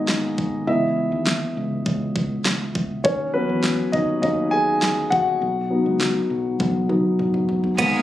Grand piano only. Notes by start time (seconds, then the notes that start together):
Already playing: G#3 A#3 B3 D#4 F#4 G#4 D#5 F#5 G#5
0.67 E3 B3 E4 D#5 E5
3.04 C#4 C#5
3.34 F#3 B3 C#4 A#4 B4
3.92 D#4 D#5
4.22 F#3 A#3 C#4 D#4 D#5
4.51 G#4 G#5
5.10 F#4 F#5
5.70 F#3 B3 D#4
6.89 F#3 B3 D#4
7.78 G#3 A#3 B3